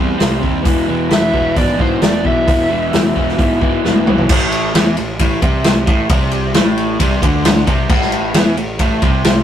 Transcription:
0.00 0.14 E2 loud
0.00 0.17 C3 medium
0.00 0.17 G3 medium
0.00 0.18 C4 medium
0.18 0.40 C2 medium
0.18 0.39 C3 medium
0.18 0.40 G3 medium
0.18 0.41 C4 medium
0.18 snare loud
0.18 open hi-hat soft
0.41 0.63 D#2 medium
0.41 0.63 C3 medium
0.41 0.64 G3 medium
0.41 0.64 C4 medium
0.41 kick medium
0.64 0.86 E1 medium
0.64 0.86 E2 loud
0.64 0.86 B2 loud
0.64 0.88 E3 loud
0.64 kick loud
0.64 open hi-hat medium
0.86 1.09 E1 medium
0.86 1.09 E2 medium
0.86 1.09 B2 medium
0.86 1.11 E3 medium
1.09 1.32 E1 medium
1.09 1.32 E2 medium
1.09 1.32 B2 medium
1.09 1.33 E3 loud
1.09 1.56 E5 loud
1.09 snare loud
1.09 open hi-hat soft
1.32 1.54 E1 medium
1.32 1.54 E2 medium
1.32 1.54 B2 medium
1.32 1.56 E3 medium
1.32 kick medium
1.55 1.96 G#1 medium
1.55 1.76 E2 medium
1.55 1.77 B2 medium
1.55 1.78 E3 medium
1.55 1.80 D5 medium
1.55 kick medium
1.55 open hi-hat soft
1.77 1.99 E2 medium
1.77 2.00 B2 medium
1.77 2.02 E3 medium
1.77 2.02 C5 medium
1.77 kick medium
2.01 2.22 E1 medium
2.01 2.22 E2 medium
2.01 2.23 B2 medium
2.01 2.24 E3 medium
2.01 2.24 D5 medium
2.01 snare loud
2.01 open hi-hat soft
2.23 2.45 B1 medium
2.23 2.45 E2 medium
2.23 2.46 B2 medium
2.23 2.46 E3 medium
2.23 3.58 E5 medium
2.23 kick medium
2.46 2.68 E1 medium
2.46 2.68 E2 medium
2.46 2.69 B2 medium
2.46 2.69 E3 medium
2.46 kick loud
2.46 open hi-hat medium
2.69 2.90 E1 medium
2.69 2.90 E2 medium
2.69 2.91 B2 medium
2.69 2.92 E3 medium
2.91 3.13 E1 medium
2.91 3.13 E2 medium
2.91 3.14 B2 medium
2.91 3.14 E3 medium
2.91 snare loud
2.91 open hi-hat soft
3.14 3.36 E1 medium
3.14 3.36 E2 medium
3.14 3.37 B2 medium
3.14 3.38 E3 medium
3.14 kick medium
3.28 snare soft
3.37 3.78 G#1 medium
3.37 3.59 E2 medium
3.37 3.60 B2 medium
3.37 3.60 E3 medium
3.37 kick loud
3.37 open hi-hat soft
3.61 3.83 E2 medium
3.61 3.83 B2 medium
3.61 3.84 E3 medium
3.61 kick medium
3.84 4.04 E1 medium
3.84 4.06 E2 medium
3.84 4.06 B2 medium
3.84 4.07 E3 medium
3.84 snare medium
3.96 high tom medium
4.07 4.27 B1 medium
4.07 4.28 E2 medium
4.07 4.28 B2 medium
4.07 4.29 E3 medium
4.07 mid tom medium
4.18 floor tom medium
4.29 4.71 A1 medium
4.29 4.74 A2 loud
4.29 kick loud
4.29 crash loud
4.52 ride medium
4.75 4.96 E2 medium
4.75 4.96 E3 loud
4.75 snare loud
4.75 ride medium
4.97 5.18 A1 medium
4.97 5.15 A2 medium
4.97 ride medium
5.19 5.41 A1 loud
5.19 5.42 A2 medium
5.19 kick medium
5.19 ride medium
5.42 5.84 C2 medium
5.42 5.86 C3 loud
5.42 kick loud
5.42 ride medium
5.64 snare loud
5.64 ride medium
5.86 6.08 A1 medium
5.86 6.08 A2 medium
5.86 kick loud
5.86 ride medium
6.09 6.51 C2 medium
6.09 6.54 C3 loud
6.09 kick loud
6.09 ride loud
6.31 ride medium
6.54 6.97 A1 medium
6.54 6.99 A2 loud
6.54 snare loud
6.54 ride medium
6.77 ride medium
7.00 7.21 C2 loud
7.00 7.22 C3 medium
7.00 kick medium
7.00 ride loud
7.22 7.64 D2 loud
7.22 7.66 D3 loud
7.22 kick loud
7.22 ride medium
7.45 snare loud
7.45 ride loud
7.67 7.88 C2 loud
7.67 7.89 C3 loud
7.67 kick loud
7.67 ride medium
7.89 8.31 A1 loud
7.89 8.34 A2 loud
7.89 kick loud
7.89 crash loud
8.02 snare soft
8.12 ride medium
8.34 8.55 E2 medium
8.34 8.56 E3 loud
8.34 snare loud
8.34 ride loud
8.57 8.78 A1 medium
8.57 8.75 A2 medium
8.57 ride medium
8.79 9.00 A1 loud
8.79 9.01 A2 loud
8.79 kick medium
8.79 ride medium
9.02 9.43 C2 loud
9.02 9.43 C3 loud
9.02 kick loud
9.02 ride medium
9.24 snare loud
9.24 ride medium

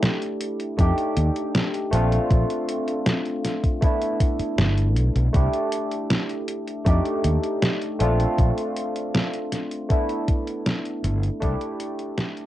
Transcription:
0.00 0.70 A3 medium
0.00 0.71 D4 medium
0.00 0.71 E4 medium
0.00 0.72 G4 medium
0.00 snare loud
0.00 closed hi-hat medium
0.22 closed hi-hat soft
0.41 closed hi-hat medium
0.60 closed hi-hat soft
0.77 0.91 F2 medium
0.77 1.84 A3 medium
0.77 1.85 D4 medium
0.77 1.85 D#4 medium
0.77 1.86 G4 medium
0.77 kick loud
0.77 closed hi-hat medium
0.98 closed hi-hat soft
1.17 1.29 D#2 medium
1.17 closed hi-hat loud
1.36 closed hi-hat soft
1.55 snare loud
1.55 closed hi-hat medium
1.74 closed hi-hat soft
1.91 2.17 A#1 medium
1.91 3.74 A3 loud
1.91 3.75 C4 medium
1.91 3.75 D4 medium
1.91 3.76 F4 loud
1.91 closed hi-hat medium
2.12 closed hi-hat soft
2.30 2.43 A#1 loud
2.30 kick loud
2.30 closed hi-hat medium
2.50 closed hi-hat soft
2.69 closed hi-hat medium
2.88 closed hi-hat soft
3.06 snare loud
3.06 closed hi-hat medium
3.25 closed hi-hat soft
3.44 snare soft
3.44 closed hi-hat medium
3.64 kick medium
3.64 closed hi-hat soft
3.81 5.26 A3 medium
3.81 5.27 B3 medium
3.81 5.27 D4 medium
3.81 5.28 E4 medium
3.81 kick loud
3.81 closed hi-hat medium
4.02 closed hi-hat soft
4.20 kick loud
4.20 closed hi-hat loud
4.39 muted fretless electric bass stroke soft
4.39 closed hi-hat soft
4.58 4.96 G1 medium
4.58 snare loud
4.58 closed hi-hat medium
4.78 closed hi-hat soft
4.96 5.09 B1 medium
4.96 closed hi-hat medium
5.16 5.27 B1 loud
5.16 closed hi-hat soft
5.33 5.47 C2 loud
5.33 6.78 A3 medium
5.33 6.79 D4 medium
5.33 6.79 E4 medium
5.33 6.80 G4 medium
5.33 kick loud
5.33 closed hi-hat medium
5.53 closed hi-hat soft
5.72 closed hi-hat medium
5.91 closed hi-hat soft
6.10 snare loud
6.10 closed hi-hat medium
6.29 closed hi-hat soft
6.48 closed hi-hat medium
6.68 closed hi-hat soft
6.85 6.99 F2 medium
6.85 7.92 A3 medium
6.85 7.92 D4 medium
6.85 7.93 D#4 medium
6.85 7.93 G4 medium
6.85 kick loud
6.85 closed hi-hat medium
7.05 closed hi-hat soft
7.24 7.37 D#2 medium
7.24 closed hi-hat medium
7.43 closed hi-hat soft
7.62 snare loud
7.62 closed hi-hat medium
7.82 closed hi-hat soft
7.99 8.25 A#1 medium
7.99 9.82 A3 medium
7.99 9.82 C4 medium
7.99 9.83 D4 medium
7.99 9.83 F4 loud
7.99 closed hi-hat medium
8.20 closed hi-hat soft
8.38 8.50 A#1 loud
8.38 kick loud
8.38 closed hi-hat medium
8.58 closed hi-hat soft
8.76 closed hi-hat medium
8.96 closed hi-hat soft
9.15 snare loud
9.15 closed hi-hat medium
9.33 closed hi-hat soft
9.52 snare soft
9.52 closed hi-hat medium
9.71 closed hi-hat soft
9.89 11.34 A3 medium
9.89 11.34 B3 medium
9.89 11.35 D4 medium
9.89 11.35 E4 medium
9.89 kick loud
9.89 closed hi-hat medium
10.09 closed hi-hat soft
10.28 kick loud
10.28 closed hi-hat medium
10.47 closed hi-hat soft
10.66 snare loud
10.66 closed hi-hat medium
10.85 closed hi-hat soft
11.04 11.28 G1 loud
11.04 closed hi-hat medium
11.23 closed hi-hat soft
11.40 11.54 C2 loud
11.40 12.46 A3 medium
11.40 12.46 D4 medium
11.40 12.46 E4 medium
11.40 12.46 G4 medium
11.40 kick loud
11.40 closed hi-hat medium
11.61 closed hi-hat soft
11.80 closed hi-hat medium
11.99 closed hi-hat soft
12.18 snare loud
12.18 closed hi-hat medium
12.37 closed hi-hat soft

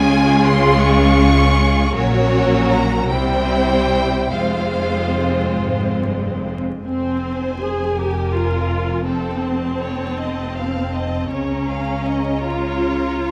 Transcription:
0.00 1.95 C#2 medium
0.00 1.95 C#3 medium
0.00 1.95 G#3 medium
0.00 1.91 C#4 medium
0.00 1.92 F4 medium
0.00 1.92 G#4 medium
0.00 0.47 G#5 loud
0.46 0.83 C6 loud
0.83 1.95 C#6 loud
1.95 3.06 A#1 medium
1.95 3.06 A#2 medium
1.95 3.06 F#3 medium
1.95 3.06 C#4 medium
1.95 3.06 F#4 medium
1.95 3.06 A#4 medium
1.95 2.70 C#5 loud
2.71 3.10 A#5 medium
3.10 4.33 C2 medium
3.10 4.33 C3 medium
3.10 4.33 G3 medium
3.10 4.33 C4 medium
3.10 4.31 E4 medium
3.10 4.31 C5 medium
3.10 4.30 G5 loud
4.32 6.60 F1 medium
4.32 5.49 F2 medium
4.32 6.60 G#3 medium
4.32 6.60 C4 medium
4.32 6.63 F4 medium
4.32 6.59 C5 medium
4.32 5.59 F5 medium
5.61 5.99 G#2 medium
6.02 6.44 G2 medium
6.43 6.83 F2 medium
6.84 11.28 F1 medium
6.84 11.27 F2 medium
6.84 7.56 C4 medium
6.84 7.94 C5 medium
6.84 9.02 G#5 medium
7.61 7.97 G#4 medium
7.97 8.34 G4 medium
7.97 9.07 A#4 medium
8.34 9.06 F4 medium
9.07 11.28 C4 medium
9.07 9.43 A4 soft
9.07 11.28 A5 soft
9.45 9.82 C5 soft
9.82 10.19 C#5 soft
10.19 10.57 D#5 soft
10.57 10.95 F5 medium
10.95 11.31 D#5 soft
11.31 13.31 C#2 medium
11.31 13.31 C#3 soft
11.31 12.44 C#4 medium
11.31 11.67 C#5 medium
11.31 13.31 A#5 soft
11.67 12.05 F5 soft
12.05 12.44 D#5 soft
12.43 13.31 F4 medium
12.43 13.31 C#5 medium

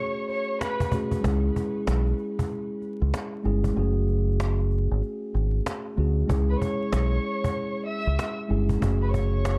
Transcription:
0.00 0.86 A3 medium
0.00 0.88 C#4 medium
0.00 0.89 F#4 medium
0.00 0.90 G#4 medium
0.00 0.25 C#5 medium
0.00 0.25 C#6 medium
0.29 0.58 C#5 medium
0.29 0.58 C#6 medium
0.29 cajon slap soft
0.61 0.89 B4 medium
0.61 0.90 B5 medium
0.61 cajon slap loud
0.80 cajon bass medium
0.91 1.23 A3 medium
0.91 1.21 C#4 soft
0.91 1.25 F#4 soft
0.91 1.25 G#4 medium
0.91 cajon bass loud
1.11 cajon bass medium
1.21 1.49 C#2 loud
1.21 3.39 G#3 medium
1.21 3.40 C#4 medium
1.21 cajon bass loud
1.25 3.41 E4 medium
1.25 3.42 G#4 medium
1.56 cajon bass medium
1.87 2.12 B1 medium
1.87 cajon slap loud
2.07 cajon slap soft
2.18 cajon slap soft
2.39 cajon bass medium
2.49 cajon slap medium
2.82 cajon slap soft
3.02 3.11 C#2 medium
3.14 cajon slap loud
3.43 3.70 G1 medium
3.43 3.76 G#3 medium
3.43 3.74 C#4 medium
3.43 3.77 E4 medium
3.43 3.77 G#4 medium
3.43 cajon slap soft
3.64 cajon bass medium
3.73 4.87 F#1 loud
3.73 5.92 A3 medium
3.73 5.93 C#4 medium
3.73 cajon slap soft
3.77 5.94 F#4 medium
3.77 5.95 G#4 medium
4.08 cajon slap soft
4.40 cajon slap loud
4.59 cajon slap soft
4.71 cajon slap soft
4.91 5.00 G#1 medium
5.02 cajon slap medium
5.34 5.59 G#1 medium
5.34 cajon slap soft
5.66 cajon slap loud
5.97 6.23 D2 medium
5.97 6.29 A3 medium
5.97 6.26 C#4 soft
5.97 6.30 F#4 soft
5.97 6.30 G#4 medium
5.97 cajon slap soft
6.26 6.54 C#2 loud
6.26 8.44 G#3 medium
6.26 8.45 C#4 medium
6.26 cajon bass loud
6.30 8.46 E4 medium
6.30 8.48 G#4 medium
6.49 6.60 B4 medium
6.49 6.60 B5 medium
6.61 7.83 C#5 medium
6.61 7.84 C#6 medium
6.61 cajon bass medium
6.92 7.17 B1 medium
6.92 cajon slap loud
7.44 cajon bass medium
7.87 8.35 E5 medium
7.87 8.36 E6 medium
8.07 8.16 C#2 medium
8.19 cajon slap loud
8.48 8.75 G1 medium
8.48 8.81 G#3 medium
8.48 8.79 C#4 medium
8.48 8.82 E4 medium
8.48 8.82 G#4 medium
8.69 cajon bass medium
8.78 9.59 A3 medium
8.78 9.59 C#4 medium
8.82 9.59 F#1 loud
8.82 9.59 F#4 medium
8.82 9.59 G#4 medium
8.82 cajon bass loud
9.02 9.12 B4 medium
9.02 9.13 B5 medium
9.12 9.59 C#5 medium
9.12 9.59 C#6 medium
9.12 cajon bass medium
9.45 cajon slap loud

